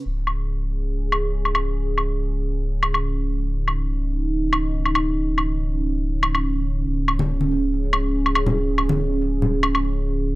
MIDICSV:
0, 0, Header, 1, 4, 480
1, 0, Start_track
1, 0, Tempo, 425532
1, 65, Time_signature, 4, 2, 24, 8
1, 11680, End_track
2, 0, Start_track
2, 0, Title_t, "Analog synth pad"
2, 0, Program_c, 0, 89
2, 65, Note_on_c, 0, 61, 77
2, 67, Note_on_c, 0, 68, 72
2, 3905, Note_on_c, 0, 63, 77
2, 3932, Note_off_c, 0, 68, 0
2, 7742, Note_on_c, 0, 68, 75
2, 7771, Note_off_c, 0, 63, 0
2, 11610, Note_off_c, 0, 68, 0
2, 11680, Note_off_c, 0, 61, 0
2, 11680, End_track
3, 0, Start_track
3, 0, Title_t, "Sub bass"
3, 0, Program_c, 1, 38
3, 64, Note_on_c, 1, 25, 83
3, 7723, Note_off_c, 1, 25, 0
3, 7746, Note_on_c, 1, 25, 85
3, 11680, Note_off_c, 1, 25, 0
3, 11680, End_track
4, 0, Start_track
4, 0, Title_t, "Drums"
4, 305, Note_on_c, 9, 77, 45
4, 418, Note_off_c, 9, 77, 0
4, 1266, Note_on_c, 9, 77, 69
4, 1379, Note_off_c, 9, 77, 0
4, 1638, Note_on_c, 9, 77, 42
4, 1747, Note_off_c, 9, 77, 0
4, 1747, Note_on_c, 9, 77, 66
4, 1860, Note_off_c, 9, 77, 0
4, 2229, Note_on_c, 9, 77, 44
4, 2342, Note_off_c, 9, 77, 0
4, 3188, Note_on_c, 9, 77, 69
4, 3301, Note_off_c, 9, 77, 0
4, 3319, Note_on_c, 9, 77, 53
4, 3432, Note_off_c, 9, 77, 0
4, 4147, Note_on_c, 9, 77, 44
4, 4260, Note_off_c, 9, 77, 0
4, 5106, Note_on_c, 9, 77, 69
4, 5219, Note_off_c, 9, 77, 0
4, 5477, Note_on_c, 9, 77, 44
4, 5586, Note_off_c, 9, 77, 0
4, 5586, Note_on_c, 9, 77, 72
4, 5698, Note_off_c, 9, 77, 0
4, 6066, Note_on_c, 9, 77, 46
4, 6179, Note_off_c, 9, 77, 0
4, 7025, Note_on_c, 9, 77, 73
4, 7138, Note_off_c, 9, 77, 0
4, 7159, Note_on_c, 9, 77, 53
4, 7271, Note_off_c, 9, 77, 0
4, 7987, Note_on_c, 9, 77, 51
4, 8100, Note_off_c, 9, 77, 0
4, 8114, Note_on_c, 9, 63, 83
4, 8227, Note_off_c, 9, 63, 0
4, 8356, Note_on_c, 9, 63, 57
4, 8469, Note_off_c, 9, 63, 0
4, 8945, Note_on_c, 9, 77, 75
4, 9057, Note_off_c, 9, 77, 0
4, 9316, Note_on_c, 9, 77, 50
4, 9423, Note_off_c, 9, 77, 0
4, 9423, Note_on_c, 9, 77, 76
4, 9536, Note_off_c, 9, 77, 0
4, 9548, Note_on_c, 9, 64, 85
4, 9661, Note_off_c, 9, 64, 0
4, 9904, Note_on_c, 9, 77, 49
4, 10017, Note_off_c, 9, 77, 0
4, 10032, Note_on_c, 9, 63, 91
4, 10145, Note_off_c, 9, 63, 0
4, 10628, Note_on_c, 9, 64, 74
4, 10741, Note_off_c, 9, 64, 0
4, 10863, Note_on_c, 9, 77, 77
4, 10976, Note_off_c, 9, 77, 0
4, 10995, Note_on_c, 9, 77, 55
4, 11108, Note_off_c, 9, 77, 0
4, 11680, End_track
0, 0, End_of_file